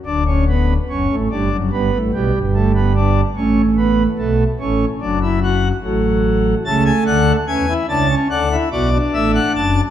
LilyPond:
<<
  \new Staff \with { instrumentName = "Pipe organ" } { \time 4/4 \key d \major \tempo 4 = 73 << { r1 | r1 | a''16 gis''16 fis''8 gis''8 a''8 fis''8 d''8 e''16 fis''16 a''8 | } \\ { d'16 cis'16 b8 cis'8 d'8 b8 g8 a16 b16 d'8 | cis'8 b8 a8 cis'8 d'16 e'16 fis'8 fis4 | a4 cis'16 e'16 d'16 cis'16 d'16 e'16 fis'16 d'4~ d'16 | } >> }
  \new Staff \with { instrumentName = "Pipe organ" } { \clef bass \time 4/4 \key d \major <d,, d,>4 <fis,, fis,>16 <a,, a,>16 <g,, g,>16 <fis,, fis,>16 <g,, g,>16 <a,, a,>16 <b,, b,>16 <g,, g,>4~ <g,, g,>16 | <a,, a,>4 <b,, b,>8 <a,, a,>8 <fis,, fis,>4 <a,, a,>4 | <cis, cis>8 <d, d>8 <e, e>8 <cis, cis>8 <d, d>8 <b,, b,>8 <a,, a,>8 <fis,, fis,>8 | }
>>